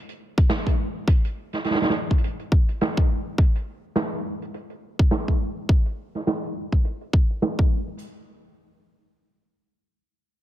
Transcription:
0.09 closed hi-hat soft
0.37 kick loud
0.37 closed hi-hat soft
0.50 snare loud
0.50 closed hi-hat medium
0.67 kick medium
0.67 closed hi-hat medium
1.08 kick loud
1.08 closed hi-hat medium
1.25 closed hi-hat medium
1.53 snare soft
1.53 closed hi-hat medium
1.64 snare soft
1.64 closed hi-hat medium
1.71 snare medium
1.75 snare medium
1.82 snare medium
1.82 closed hi-hat soft
1.84 snare medium
1.90 snare medium
2.10 kick medium
2.10 closed hi-hat medium
2.18 closed hi-hat soft
2.24 closed hi-hat medium
2.28 closed hi-hat soft
2.39 closed hi-hat soft
2.52 kick medium
2.69 closed hi-hat medium
2.81 snare loud
2.81 closed hi-hat medium
2.97 kick medium
2.97 closed hi-hat soft
3.38 kick loud
3.38 closed hi-hat medium
3.55 closed hi-hat medium
3.96 snare loud
3.96 closed hi-hat medium
4.42 closed hi-hat medium
4.54 closed hi-hat medium
4.70 closed hi-hat medium
4.99 kick medium
5.11 snare loud
5.11 closed hi-hat medium
5.28 kick medium
5.28 closed hi-hat medium
5.69 kick loud
5.69 closed hi-hat medium
5.86 closed hi-hat medium
6.15 snare soft
6.15 closed hi-hat soft
6.27 snare loud
6.27 closed hi-hat medium
6.44 closed hi-hat soft
6.72 kick medium
6.72 closed hi-hat medium
6.85 closed hi-hat medium
7.01 closed hi-hat medium
7.13 kick medium
7.30 closed hi-hat medium
7.42 snare loud
7.42 closed hi-hat medium
7.59 kick medium
7.59 closed hi-hat soft
7.61 closed hi-hat soft
7.67 closed hi-hat soft
7.87 closed hi-hat soft

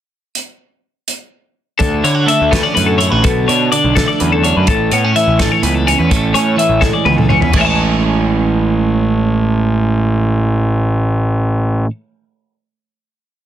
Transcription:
0.35 closed hi-hat soft
1.08 closed hi-hat soft
1.79 2.01 D2 medium
1.79 3.71 D3 medium
1.79 2.03 A4 medium
1.79 kick medium
1.79 closed hi-hat medium
2.04 2.24 D3 medium
2.04 2.15 E4 medium
2.04 2.28 C#5 medium
2.04 closed hi-hat medium
2.15 2.98 F#4 medium
2.26 3.27 A3 medium
2.26 2.52 E5 medium
2.26 closed hi-hat medium
2.41 2.62 D2 medium
2.51 2.63 B3 medium
2.51 2.64 A4 medium
2.51 kick medium
2.51 snare loud
2.51 closed hi-hat medium
2.63 3.23 C#4 soft
2.63 2.74 D5 medium
2.74 3.08 F#2 medium
2.74 3.23 A2 medium
2.74 2.87 B4 medium
2.74 closed hi-hat medium
2.86 2.99 A4 medium
2.98 3.12 E4 medium
2.98 3.10 C#5 medium
2.98 closed hi-hat medium
3.10 3.22 A1 medium
3.10 3.24 F#4 medium
3.10 3.23 B4 medium
3.24 3.45 B1 medium
3.24 3.72 B2 medium
3.24 3.48 A4 medium
3.24 kick loud
3.24 closed hi-hat medium
3.48 3.69 B2 medium
3.48 4.44 D4 medium
3.48 3.71 C#5 medium
3.48 closed hi-hat medium
3.72 4.68 D3 medium
3.72 3.96 D5 medium
3.72 closed hi-hat medium
3.84 4.05 B1 medium
3.96 4.96 A3 medium
3.96 4.08 A4 medium
3.96 kick medium
3.96 snare medium
3.96 closed hi-hat medium
4.08 4.20 D5 medium
4.20 4.52 E2 medium
4.20 4.65 F#2 medium
4.20 4.32 B4 medium
4.20 closed hi-hat medium
4.32 4.44 A4 medium
4.44 4.66 D4 medium
4.44 4.57 C#5 medium
4.44 closed hi-hat medium
4.57 4.66 F#2 medium
4.57 4.68 B4 medium
4.67 4.88 A1 medium
4.67 5.63 A2 medium
4.67 4.92 A4 medium
4.67 kick medium
4.67 closed hi-hat medium
4.91 5.12 A2 medium
4.91 5.05 B3 medium
4.91 5.15 C#5 medium
4.91 closed hi-hat medium
5.05 5.86 C#4 medium
5.16 6.56 E3 medium
5.16 5.39 E5 medium
5.16 closed hi-hat medium
5.27 5.48 A1 medium
5.39 6.80 A3 medium
5.39 5.52 A4 medium
5.39 kick medium
5.39 snare medium
5.39 closed hi-hat medium
5.52 5.63 C#5 medium
5.63 5.94 C#2 medium
5.63 6.11 E2 medium
5.63 5.75 B4 medium
5.63 closed hi-hat medium
5.75 5.87 A4 medium
5.87 6.34 C#4 medium
5.87 5.99 C#5 medium
5.87 closed hi-hat medium
5.99 6.09 E2 medium
5.99 6.10 B4 medium
6.10 6.32 A1 medium
6.10 7.06 A2 medium
6.10 6.34 A4 medium
6.10 kick loud
6.10 closed hi-hat medium
6.34 6.55 A2 medium
6.34 7.28 C#4 medium
6.34 6.58 C#5 medium
6.34 closed hi-hat medium
6.56 7.50 E3 medium
6.56 6.82 E5 medium
6.56 closed hi-hat medium
6.69 6.90 A1 medium
6.81 7.50 G#3 medium
6.81 6.93 A4 medium
6.81 kick medium
6.81 snare medium
6.93 7.06 D5 medium
7.05 7.37 C#2 medium
7.05 7.53 E2 medium
7.05 7.17 B4 medium
7.05 high tom medium
7.17 7.29 A4 medium
7.17 mid tom medium
7.29 7.51 C#4 medium
7.29 7.41 C#5 medium
7.29 mid tom medium
7.40 7.51 E2 medium
7.40 7.53 B4 medium
7.40 floor tom medium
7.53 11.85 A1 medium
7.53 11.88 A2 medium
7.53 11.89 E3 medium
7.53 11.90 G#3 medium
7.53 kick medium
7.53 crash medium
7.57 11.91 C#4 medium
7.57 11.90 C#5 medium
7.61 7.64 E5 medium
7.61 11.90 A5 medium

